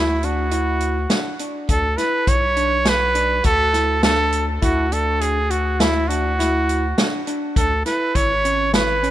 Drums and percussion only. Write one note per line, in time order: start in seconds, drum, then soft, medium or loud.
0.23 closed hi-hat soft
0.51 closed hi-hat medium
0.80 closed hi-hat medium
1.10 snare medium
1.10 closed hi-hat medium
1.39 closed hi-hat medium
1.69 kick medium
1.69 closed hi-hat medium
1.98 snare soft
1.98 closed hi-hat medium
2.27 kick medium
2.27 closed hi-hat medium
2.57 closed hi-hat medium
2.85 snare medium
2.85 closed hi-hat medium
3.15 closed hi-hat medium
3.44 kick medium
3.44 closed hi-hat medium
3.74 snare soft
3.74 closed hi-hat medium
4.03 snare loud
4.03 closed hi-hat medium
4.32 closed hi-hat medium
4.62 kick medium
4.62 closed hi-hat medium
4.92 closed hi-hat medium
5.21 closed hi-hat medium
5.50 closed hi-hat medium
5.80 snare medium
5.80 closed hi-hat medium
6.10 closed hi-hat medium
6.40 snare soft
6.40 closed hi-hat medium
6.69 closed hi-hat medium
6.98 snare medium
6.98 closed hi-hat medium
7.27 closed hi-hat medium
7.56 kick medium
7.56 closed hi-hat medium
7.86 snare soft
7.86 closed hi-hat medium
8.15 kick medium
8.15 closed hi-hat medium
8.45 closed hi-hat medium
8.74 snare medium
8.74 closed hi-hat medium
9.03 closed hi-hat medium